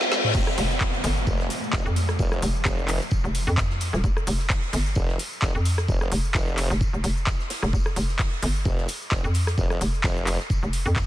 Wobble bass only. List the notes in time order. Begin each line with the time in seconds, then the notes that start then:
1.27 F1
1.73 F1
2.19 F1
2.65 F1
4.96 F1
5.42 F1
5.89 F1
6.35 F1
8.65 F1
9.12 F1
9.58 F1
10.04 F1